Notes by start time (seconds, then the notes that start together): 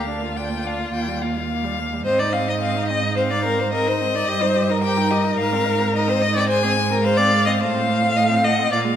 Already playing: D2 F5
0.07 D4
0.22 A#3 F4
0.35 D4 F4 G5
0.49 A#3
0.64 D4 F5
0.78 A#3
0.92 D#2 A#3 G5
1.08 G3
1.22 A#3 F5
1.36 G3
1.49 A#3
1.64 G3
1.79 A#3
1.93 G3
2.04 G#2 C4 C5 D#5
2.19 D#4 D5
2.32 C4 F5
2.48 D#4 D#5
2.61 C4 F5
2.76 D#4
2.88 C4 D#5
3.03 D#4
3.16 C4 C5 F5
3.31 D#4 D5
3.45 C4 A#4
3.59 D#4 C5
3.73 C4 A#4 D#5
3.87 D#4 C5
4.01 C4
4.15 D#4 D5
4.28 G2 G4 D#5
4.41 D#4 C5
4.56 G4
4.69 D#4 A#4
4.82 G4 A#4 G5
4.97 D#4
5.11 G4 D#5
5.24 D#4
5.38 G#2 D#4 F5
5.52 C4
5.65 D#4
5.79 C4
5.93 D#4 D#5
6.08 C4 C5
6.21 D#4 D#5
6.35 C4 D5
6.49 G#3 C5 G#5
6.63 C4 G#4
6.76 G#3
6.90 C4 A#4
7.03 G#3 C5 F5
7.17 C4 D5
7.31 G#3
7.46 C4 D#5
7.60 A2 A3 C5 F5
7.74 C4
7.88 A3
8.02 C4
8.15 A3 D#5
8.29 C4
8.44 A3 D#5 F#5
8.59 C4
8.71 A#2 A#3 D5 F5
8.84 G#3